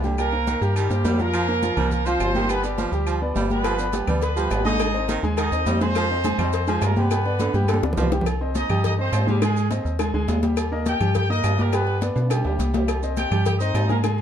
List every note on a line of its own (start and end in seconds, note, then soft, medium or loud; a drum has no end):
0.00 0.56 C2 loud
0.00 0.27 D3 medium
0.00 0.15 G3 medium
0.00 0.15 G4 medium
0.00 0.16 G5 medium
0.00 high conga medium
0.00 maracas soft
0.18 0.30 G3 medium
0.18 0.73 A#3 medium
0.18 0.30 G4 medium
0.18 0.72 A#4 loud
0.18 0.30 G5 medium
0.18 high conga soft
0.18 low agogo loud
0.18 claves medium
0.18 maracas medium
0.33 0.56 A#3 medium
0.33 0.57 A#4 medium
0.33 0.57 C5 medium
0.33 high conga soft
0.33 low agogo medium
0.47 0.62 D#3 medium
0.47 high conga medium
0.47 low timbale medium
0.47 low agogo medium
0.47 maracas medium
0.61 0.88 G2 loud
0.61 0.85 G3 medium
0.61 0.85 G4 loud
0.61 0.85 G5 medium
0.61 high conga soft
0.61 maracas soft
0.76 0.91 D#3 medium
0.76 1.20 G3 medium
0.76 1.19 G4 medium
0.76 high conga soft
0.76 low agogo loud
0.76 claves medium
0.76 maracas medium
0.90 1.04 G2 medium
0.90 1.02 A#3 medium
0.90 1.02 A#4 medium
0.90 1.03 C5 medium
0.90 high conga soft
0.90 maracas medium
1.05 1.71 F2 loud
1.05 1.20 G3 medium
1.05 1.17 A#3 medium
1.05 1.17 A#4 medium
1.05 1.17 C5 medium
1.05 high conga medium
1.05 low timbale loud
1.05 low agogo medium
1.05 maracas medium
1.19 1.43 F3 medium
1.19 1.91 A#3 medium
1.19 1.43 F4 medium
1.19 1.91 A#4 loud
1.19 1.43 F5 medium
1.19 high conga medium
1.19 maracas soft
1.34 1.56 F3 loud
1.34 high conga soft
1.34 low agogo loud
1.34 claves medium
1.34 maracas medium
1.48 1.60 A#3 medium
1.48 1.60 A#4 medium
1.48 1.60 C5 medium
1.48 high conga soft
1.63 1.75 F3 medium
1.63 1.75 F4 medium
1.63 1.75 F5 medium
1.63 high conga medium
1.63 low timbale medium
1.63 low agogo medium
1.63 maracas medium
1.77 2.17 C2 medium
1.77 1.92 G3 medium
1.77 2.01 A#3 medium
1.77 2.01 A#4 medium
1.77 2.01 C5 medium
1.77 high conga soft
1.77 low conga medium
1.77 low agogo loud
1.77 claves medium
1.77 maracas soft
1.91 2.05 A#3 medium
1.91 2.05 A#4 loud
1.91 high conga soft
1.91 low conga medium
1.91 low agogo medium
1.91 maracas medium
2.06 2.21 F3 medium
2.06 2.30 F3 medium
2.06 2.50 C4 medium
2.06 2.30 F4 medium
2.06 2.49 C5 loud
2.06 2.30 F5 medium
2.06 high conga soft
2.06 maracas medium
2.20 2.87 G1 loud
2.20 high conga soft
2.20 low timbale loud
2.20 low agogo loud
2.20 claves medium
2.20 maracas medium
2.35 2.58 D#3 medium
2.35 2.47 G3 medium
2.35 2.47 G4 medium
2.35 2.47 G5 medium
2.35 high conga medium
2.35 maracas soft
2.49 2.61 G3 medium
2.49 2.64 B3 medium
2.49 2.61 G4 medium
2.49 2.64 B4 loud
2.49 2.62 G5 loud
2.49 high conga soft
2.49 low agogo loud
2.49 claves medium
2.49 maracas medium
2.63 3.24 G3 medium
2.63 2.87 B3 medium
2.63 3.23 G4 medium
2.63 2.87 B4 medium
2.63 2.88 D5 medium
2.63 high conga soft
2.63 low agogo medium
2.63 maracas medium
2.78 2.93 F3 medium
2.78 high conga loud
2.78 low timbale medium
2.78 low agogo medium
2.78 maracas medium
2.92 3.33 D2 medium
2.92 3.16 G3 medium
2.92 3.16 G4 medium
2.92 3.16 G5 loud
2.92 maracas soft
3.06 3.22 F3 medium
3.06 high conga soft
3.06 low agogo loud
3.06 claves medium
3.06 maracas medium
3.21 3.33 B3 medium
3.21 3.33 B4 medium
3.21 3.34 D5 medium
3.21 high conga soft
3.35 4.02 G1 loud
3.35 3.50 G3 medium
3.35 3.48 B3 medium
3.35 3.48 B4 medium
3.35 3.48 D5 medium
3.35 high conga medium
3.35 low timbale medium
3.35 low agogo medium
3.35 maracas medium
3.50 3.74 G3 medium
3.50 4.04 B3 medium
3.50 3.74 G4 medium
3.50 4.04 B4 loud
3.50 3.74 G5 medium
3.50 high conga medium
3.50 maracas soft
3.64 3.87 F3 medium
3.64 cowbell loud
3.64 low agogo loud
3.64 claves medium
3.64 maracas medium
3.79 3.91 B3 medium
3.79 3.91 B4 medium
3.79 3.91 D5 medium
3.79 high conga soft
3.79 maracas medium
3.93 4.05 G3 medium
3.93 4.05 G4 medium
3.93 4.06 G5 medium
3.93 cowbell medium
3.93 high conga medium
3.93 low timbale medium
3.93 low agogo medium
3.93 maracas medium
4.07 4.48 D2 loud
4.07 4.23 G3 medium
4.07 4.31 B3 medium
4.07 4.31 B4 medium
4.07 4.32 D5 medium
4.07 high conga soft
4.07 low conga medium
4.07 low agogo loud
4.07 claves medium
4.07 maracas soft
4.22 4.63 B3 medium
4.22 4.62 B4 loud
4.22 cowbell loud
4.22 low agogo medium
4.22 maracas medium
4.36 4.52 F3 medium
4.36 4.60 G3 medium
4.36 4.60 G4 medium
4.36 4.61 G5 medium
4.36 high conga soft
4.36 maracas medium
4.51 5.18 G#1 loud
4.51 cowbell medium
4.51 high conga soft
4.51 low timbale loud
4.51 low agogo loud
4.51 claves medium
4.51 maracas medium
4.65 4.88 D3 medium
4.65 4.77 G#3 medium
4.65 5.19 D#4 loud
4.65 4.78 G#4 medium
4.65 5.19 D#5 loud
4.65 4.78 G#5 medium
4.65 high conga medium
4.65 maracas soft
4.80 4.92 G#3 medium
4.80 4.92 G#4 medium
4.80 4.92 G#5 medium
4.80 cowbell loud
4.80 low agogo loud
4.80 claves medium
4.80 maracas medium
4.94 5.18 C4 medium
4.94 5.18 C5 medium
4.94 5.18 D#5 medium
4.94 high conga soft
4.94 low agogo medium
5.08 5.24 D#3 medium
5.08 cowbell medium
5.08 high conga medium
5.08 low timbale medium
5.08 low agogo medium
5.08 maracas medium
5.23 5.50 D#2 loud
5.23 5.47 G#3 medium
5.23 5.47 G#4 loud
5.23 5.47 G#5 loud
5.23 high conga soft
5.23 maracas soft
5.37 5.53 D#3 medium
5.37 5.78 D#4 medium
5.37 5.78 D#5 loud
5.37 cowbell loud
5.37 high conga soft
5.37 low agogo loud
5.37 claves medium
5.37 maracas medium
5.52 5.65 D#2 medium
5.52 5.64 C4 medium
5.52 5.64 C5 medium
5.52 5.65 D#5 medium
5.52 high conga soft
5.52 maracas medium
5.66 6.33 F2 loud
5.66 5.82 G3 medium
5.66 5.78 C4 medium
5.66 5.79 C5 medium
5.66 5.79 D#5 medium
5.66 cowbell medium
5.66 high conga medium
5.66 low timbale loud
5.66 low agogo medium
5.66 maracas medium
5.81 6.05 G#3 medium
5.81 6.50 C4 medium
5.81 6.05 G#4 medium
5.81 6.49 C5 loud
5.81 6.05 G#5 medium
5.81 cowbell medium
5.81 high conga medium
5.81 maracas soft
5.95 6.18 F3 medium
5.95 cowbell loud
5.95 high conga soft
5.95 low agogo loud
5.95 claves medium
5.95 maracas medium
6.10 6.22 C4 medium
6.10 6.22 C5 medium
6.10 6.22 D#5 medium
6.10 high conga soft
6.24 6.37 G#3 medium
6.24 6.36 G#4 medium
6.24 6.37 G#5 medium
6.24 cowbell medium
6.24 high conga loud
6.24 low timbale medium
6.24 low agogo medium
6.24 maracas medium
6.38 6.79 F2 loud
6.38 6.54 G3 medium
6.38 6.63 C4 medium
6.38 6.63 C5 medium
6.38 6.63 D#5 medium
6.38 high conga soft
6.38 low conga medium
6.38 low agogo loud
6.38 claves medium
6.38 maracas soft
6.53 6.81 C4 medium
6.53 6.81 C5 medium
6.53 cowbell loud
6.53 high conga soft
6.53 low agogo medium
6.53 maracas medium
6.67 6.83 F3 medium
6.67 6.91 G#3 loud
6.67 6.92 G#4 loud
6.67 6.92 G#5 medium
6.67 high conga soft
6.67 maracas medium
6.82 7.49 G2 loud
6.82 6.97 A#3 medium
6.82 6.97 A#4 medium
6.82 cowbell medium
6.82 high conga soft
6.82 low timbale loud
6.82 low agogo loud
6.82 claves medium
6.82 maracas medium
6.96 7.19 C3 medium
6.96 7.08 G3 medium
6.96 7.94 B3 medium
6.96 7.09 G4 medium
6.96 7.94 B4 medium
6.96 7.09 G5 medium
6.96 high conga loud
6.96 maracas soft
7.11 7.23 G3 loud
7.11 7.23 G4 medium
7.11 7.23 G5 loud
7.11 cowbell loud
7.11 high conga soft
7.11 low agogo loud
7.11 claves medium
7.11 maracas medium
7.25 7.49 B3 medium
7.25 7.49 B4 medium
7.25 7.49 D5 medium
7.25 high conga soft
7.25 low agogo medium
7.39 7.55 D3 medium
7.39 cowbell medium
7.39 high conga medium
7.39 low timbale medium
7.39 low agogo medium
7.39 maracas medium
7.54 7.81 G2 loud
7.54 7.78 G3 loud
7.54 7.78 G4 medium
7.54 7.78 G5 loud
7.54 high conga medium
7.54 maracas soft
7.64 high conga medium
7.68 7.84 D3 medium
7.68 cowbell loud
7.68 low agogo loud
7.68 claves medium
7.68 maracas medium
7.74 high conga medium
7.83 7.96 D2 medium
7.83 7.95 B3 medium
7.83 7.95 B4 medium
7.83 7.95 D5 medium
7.83 high bongo loud
7.93 low conga medium
7.97 8.64 C2 loud
7.97 8.12 F3 medium
7.97 8.09 B3 medium
7.97 8.10 B4 medium
7.97 8.10 D5 medium
7.97 cowbell medium
7.97 low bongo medium
7.97 low timbale loud
7.97 low agogo medium
7.97 maracas medium
8.02 low conga loud
8.12 8.24 G3 medium
8.12 8.24 G4 medium
8.12 8.24 G5 medium
8.12 cowbell medium
8.12 low bongo medium
8.12 maracas soft
8.21 low conga loud
8.26 cowbell loud
8.26 high conga soft
8.26 low agogo loud
8.26 claves medium
8.26 maracas medium
8.41 8.65 C4 medium
8.41 8.65 C5 medium
8.41 8.65 D#5 medium
8.41 high conga soft
8.55 8.83 D#4 medium
8.55 8.83 D#5 loud
8.55 cowbell medium
8.55 high conga loud
8.55 low timbale medium
8.55 low agogo medium
8.55 maracas medium
8.70 9.10 G2 medium
8.70 8.94 G3 medium
8.70 8.94 G4 medium
8.70 8.94 G5 medium
8.70 high conga soft
8.70 low conga medium
8.70 low agogo loud
8.70 claves medium
8.70 maracas soft
8.84 8.91 D#4 medium
8.84 8.91 D#5 medium
8.84 cowbell loud
8.84 high conga soft
8.84 low conga medium
8.84 low agogo medium
8.84 maracas medium
8.98 9.22 C4 medium
8.98 9.26 C4 medium
8.98 9.22 C5 medium
8.98 9.26 C5 loud
8.98 9.23 D#5 medium
8.98 high conga soft
9.13 9.80 G#2 loud
9.13 cowbell medium
9.13 high conga soft
9.13 low timbale loud
9.13 low agogo loud
9.13 claves medium
9.13 maracas medium
9.27 9.42 G3 medium
9.27 9.39 G#3 medium
9.27 9.41 G4 medium
9.27 9.39 G#4 medium
9.27 9.39 G#5 medium
9.27 high conga medium
9.27 maracas soft
9.42 9.66 G#3 loud
9.42 9.69 G#3 medium
9.42 9.69 G#4 medium
9.42 9.66 G#4 medium
9.42 9.66 G#5 loud
9.42 cowbell loud
9.42 low agogo loud
9.42 claves medium
9.42 maracas medium
9.56 high conga soft
9.56 low agogo medium
9.56 maracas medium
9.70 9.94 C4 medium
9.70 9.94 C5 medium
9.70 9.94 D#5 medium
9.70 cowbell medium
9.70 high conga medium
9.70 low timbale medium
9.70 low agogo medium
9.70 maracas medium
9.85 10.12 D#2 medium
9.85 high conga soft
9.85 maracas soft
9.99 10.11 G#3 medium
9.99 10.12 G#4 medium
9.99 10.12 G#5 medium
9.99 cowbell loud
9.99 high conga soft
9.99 low agogo loud
9.99 claves medium
9.99 maracas medium
10.14 10.27 D2 medium
10.14 10.38 G#3 medium
10.14 10.38 G#4 loud
10.14 10.38 G#5 medium
10.14 high conga soft
10.28 10.95 D#2 loud
10.28 cowbell medium
10.28 high conga medium
10.28 low timbale loud
10.28 low agogo medium
10.28 maracas medium
10.43 10.67 G3 medium
10.43 10.67 G4 medium
10.43 10.67 G5 medium
10.43 cowbell medium
10.43 high conga medium
10.43 maracas soft
10.57 cowbell loud
10.57 high conga soft
10.57 low agogo loud
10.57 claves medium
10.57 maracas medium
10.72 10.95 A#3 medium
10.72 10.96 A#4 medium
10.72 10.96 D#5 medium
10.72 high conga soft
10.86 11.14 G4 medium
10.86 11.13 G5 loud
10.86 cowbell medium
10.86 high conga loud
10.86 low timbale medium
10.86 low agogo medium
10.86 maracas medium
11.00 11.41 G2 loud
11.00 11.24 G3 medium
11.00 11.24 G4 loud
11.00 11.25 G5 loud
11.00 high conga soft
11.00 low conga medium
11.00 low agogo loud
11.00 claves medium
11.00 maracas soft
11.15 11.29 G4 medium
11.15 11.29 G5 loud
11.15 cowbell loud
11.15 high conga soft
11.15 low conga medium
11.15 low agogo medium
11.15 maracas medium
11.30 11.53 A#3 medium
11.30 11.57 D#4 medium
11.30 11.53 A#4 medium
11.30 11.57 D#5 loud
11.30 11.54 D#5 medium
11.30 high conga soft
11.44 12.11 G2 loud
11.44 cowbell medium
11.44 high conga soft
11.44 low timbale loud
11.44 low agogo loud
11.44 claves medium
11.44 maracas medium
11.58 11.70 G3 medium
11.58 11.74 A#3 medium
11.58 11.71 G4 medium
11.58 11.73 A#4 medium
11.58 11.71 G5 medium
11.58 high conga medium
11.58 maracas soft
11.73 11.97 G3 medium
11.73 12.00 B3 medium
11.73 11.97 G4 loud
11.73 12.00 B4 medium
11.73 11.97 G5 medium
11.73 cowbell loud
11.73 low agogo loud
11.73 claves medium
11.73 maracas medium
11.87 high conga soft
11.87 low agogo medium
12.01 12.25 B3 medium
12.01 12.25 B4 medium
12.01 12.26 D5 medium
12.01 cowbell medium
12.01 high conga medium
12.01 low timbale medium
12.01 low agogo medium
12.01 maracas medium
12.16 12.43 B2 loud
12.16 high conga soft
12.16 high timbale medium
12.16 maracas soft
12.30 12.43 G3 medium
12.30 12.43 G4 medium
12.30 12.43 G5 medium
12.30 cowbell loud
12.30 high timbale medium
12.30 low agogo loud
12.30 claves medium
12.30 maracas medium
12.45 12.58 D2 medium
12.45 12.69 G3 medium
12.45 12.69 G4 medium
12.45 12.69 G5 medium
12.45 high conga soft
12.45 low timbale medium
12.59 13.26 C2 loud
12.59 cowbell medium
12.59 high conga medium
12.59 low agogo medium
12.59 maracas medium
12.74 12.97 G3 medium
12.74 12.98 G4 medium
12.74 12.98 G5 medium
12.74 cowbell medium
12.74 high conga loud
12.74 low timbale loud
12.74 maracas soft
12.88 cowbell loud
12.88 low agogo loud
12.88 claves medium
12.88 maracas medium
13.03 13.26 C4 medium
13.03 13.26 C5 medium
13.03 13.27 D#5 medium
13.03 high conga soft
13.03 maracas medium
13.17 13.45 G4 medium
13.17 13.44 G5 loud
13.17 cowbell medium
13.17 high conga medium
13.17 low timbale medium
13.17 low agogo medium
13.17 maracas medium
13.31 13.72 G2 loud
13.31 13.55 G3 loud
13.31 13.55 G4 loud
13.31 13.56 G5 medium
13.31 high conga soft
13.31 low conga medium
13.31 low agogo loud
13.31 claves medium
13.31 maracas soft
13.45 13.53 G4 medium
13.45 13.52 G5 loud
13.45 cowbell loud
13.45 high conga soft
13.45 low conga medium
13.45 low agogo medium
13.45 maracas medium
13.59 13.84 C4 medium
13.59 13.87 D#4 medium
13.59 13.84 C5 medium
13.59 13.86 D#5 loud
13.59 13.84 D#5 medium
13.59 high conga soft
13.59 maracas medium
13.74 14.22 G#2 loud
13.74 cowbell medium
13.74 high conga soft
13.74 low timbale loud
13.74 low agogo loud
13.74 claves medium
13.74 maracas medium
13.89 14.01 G#3 medium
13.89 13.96 A#3 medium
13.89 14.01 G#4 medium
13.89 13.95 A#4 medium
13.89 14.01 G#5 medium
13.89 high conga medium
13.89 maracas soft
14.04 14.22 G#3 medium
14.04 14.22 G#4 medium
14.04 14.22 G#5 loud
14.04 cowbell loud
14.04 high conga soft
14.04 low agogo loud
14.04 claves medium
14.04 maracas medium
14.18 high conga soft
14.18 low agogo medium